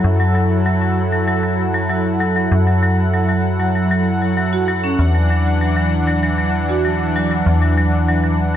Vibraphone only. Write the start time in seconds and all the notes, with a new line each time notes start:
0.20 F#3
0.35 F#3
0.66 F#3
0.81 F#3
1.12 F#3
1.28 F#3
1.43 F#3
1.74 F#3
1.90 F#3
2.21 F#3
2.36 F#3
2.67 F#3
2.83 F#3
3.13 F#3
3.29 F#3
3.60 F#3
3.75 F#3
3.91 F#3
4.22 F#3
4.37 F#3
4.53 F#4
4.68 F#3
4.84 C#4
5.15 F#3
5.30 F#3
5.61 F#3
5.76 F#3
6.08 F#3
6.23 F#3
6.38 F#3
6.69 F#4
6.85 F#3
7.16 F#3
7.31 F#3
7.62 F#3
7.77 F#3
8.08 F#3
8.24 F#3